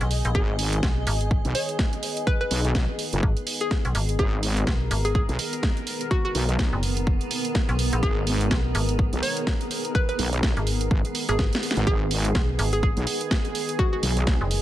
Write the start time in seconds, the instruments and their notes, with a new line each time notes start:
Already playing: analog synth pad D#3 B3 G#4, ambient pad G#4 D#5
0.01 fm bass B1, closed hi-hat
0.11 open hi-hat
0.25 fm bass A#1, closed hi-hat
0.35 wobble bass G#1, synth pluck G#4, kick
0.59 open hi-hat
0.73 closed hi-hat
0.83 fm bass B1, kick, snare
1.07 fm bass G#1, open hi-hat
1.21 closed hi-hat
1.31 kick
1.45 wobble bass B1, closed hi-hat
1.55 synth pluck C#5, open hi-hat
1.69 closed hi-hat
1.79 kick, snare
1.93 closed hi-hat
2.03 open hi-hat
2.17 closed hi-hat
2.27 synth pluck B4, kick
2.41 synth pluck B4
2.51 wobble bass B1, open hi-hat
2.65 closed hi-hat
2.75 kick, snare
2.99 open hi-hat
3.13 wobble bass F#1, closed hi-hat
3.23 fm bass G#1, kick
3.37 closed hi-hat
3.47 open hi-hat
3.61 synth pluck G#4, closed hi-hat
3.71 kick, snare
3.85 fm bass B1, closed hi-hat
3.95 fm bass G#1, open hi-hat
4.09 closed hi-hat
4.19 wobble bass G#1, synth pluck G#4, analog synth pad A#4, kick
4.43 open hi-hat
4.55 ambient pad B3, closed hi-hat
4.67 fm bass B1, kick, snare
4.91 fm bass G#1, open hi-hat
5.05 synth pluck G#4, closed hi-hat
5.15 synth pluck G#4, kick
5.29 wobble bass B1, closed hi-hat
5.39 open hi-hat
5.53 closed hi-hat
5.63 kick, snare
5.77 closed hi-hat
5.87 open hi-hat
6.01 closed hi-hat
6.11 synth pluck F#4, kick
6.25 synth pluck F#4
6.35 wobble bass B1, open hi-hat
6.49 closed hi-hat
6.59 kick, snare
6.73 fm bass F#1
6.83 open hi-hat
6.97 closed hi-hat
7.07 kick
7.21 closed hi-hat
7.31 open hi-hat
7.45 closed hi-hat
7.55 kick, snare
7.69 fm bass B1, closed hi-hat
7.79 open hi-hat
7.93 fm bass A#1, closed hi-hat
8.03 wobble bass G#1, synth pluck G#4, kick
8.27 open hi-hat
8.41 closed hi-hat
8.51 fm bass B1, kick, snare
8.75 fm bass G#1, open hi-hat
8.89 closed hi-hat
8.99 kick
9.13 wobble bass B1, closed hi-hat
9.23 synth pluck C#5, open hi-hat
9.37 closed hi-hat
9.47 kick, snare
9.61 closed hi-hat
9.71 open hi-hat
9.85 closed hi-hat
9.95 synth pluck B4, kick
10.09 synth pluck B4, closed hi-hat
10.19 wobble bass B1, open hi-hat
10.33 closed hi-hat
10.43 kick, snare
10.57 fm bass G#1, closed hi-hat
10.67 open hi-hat
10.81 closed hi-hat
10.91 wobble bass G#1, kick
11.05 closed hi-hat
11.15 open hi-hat
11.29 fm bass G#1, synth pluck G#4, closed hi-hat
11.39 kick, snare
11.53 snare, closed hi-hat
11.63 open hi-hat
11.71 snare
11.77 wobble bass G#1, closed hi-hat
11.87 wobble bass G#1, analog synth pad G#4, synth pluck G#4, kick
12.11 open hi-hat
12.23 ambient pad D#5, closed hi-hat
12.35 fm bass B1, kick, snare
12.59 fm bass G#1, open hi-hat
12.73 synth pluck G#4, closed hi-hat
12.83 synth pluck G#4, kick
12.97 wobble bass B1, closed hi-hat
13.07 open hi-hat
13.21 closed hi-hat
13.31 kick, snare
13.45 closed hi-hat
13.55 open hi-hat
13.69 closed hi-hat
13.79 synth pluck F#4, kick
13.93 synth pluck F#4
14.03 wobble bass B1, open hi-hat
14.17 closed hi-hat
14.27 kick, snare
14.41 fm bass F#1
14.51 open hi-hat